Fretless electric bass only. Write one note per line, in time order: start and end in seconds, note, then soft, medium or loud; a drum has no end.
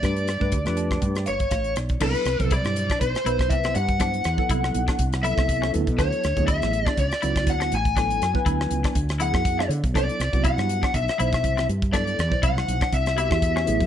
0.03 0.39 G2 medium
0.41 0.52 G2 medium
0.53 0.66 D2 medium
0.67 1.01 F2 medium
1.02 1.26 G2 medium
1.28 1.50 G1 medium
1.51 1.74 A1 medium
1.77 1.99 B1 medium
2.02 2.14 C2 medium
2.25 2.39 C2 medium
2.40 2.63 C2 medium
2.65 2.88 G2 medium
3.01 3.14 B1 medium
3.26 3.51 B1 medium
3.51 3.74 C2 medium
3.76 4.22 G2 medium
4.25 4.37 E2 medium
4.38 muted fretless electric bass stroke soft
4.50 4.73 C2 medium
4.75 4.87 B1 medium
4.99 5.35 C2 medium
5.37 5.71 C2 medium
5.75 5.86 D2 medium
5.87 5.98 B2 medium
5.99 6.11 D2 loud
6.24 6.37 D2 medium
6.37 6.60 D2 medium
6.63 6.85 A1 medium
6.98 7.10 C#2 medium
7.24 7.47 C#2 medium
7.47 7.70 D2 medium
7.72 8.18 A1 medium
8.22 8.34 F#2 medium
8.35 muted fretless electric bass stroke soft
8.46 8.69 D2 medium
8.71 8.84 C#2 medium
8.96 9.32 D2 medium
9.34 9.68 F#2 medium
9.69 9.82 D3 medium
9.84 9.94 B1 medium
9.96 10.08 C2 loud
10.20 10.32 C2 medium
10.33 10.57 C2 medium
10.58 10.81 G2 medium
10.95 11.07 B1 medium
11.20 11.44 B1 medium
11.44 11.67 C2 medium
11.69 12.15 G2 medium
12.19 12.31 E2 medium
12.32 muted fretless electric bass stroke soft
12.43 12.66 C2 medium
12.68 12.81 B1 medium
12.93 13.29 C2 medium
13.31 13.65 E2 medium
13.68 13.80 A1 medium
13.81 13.87 F#2 medium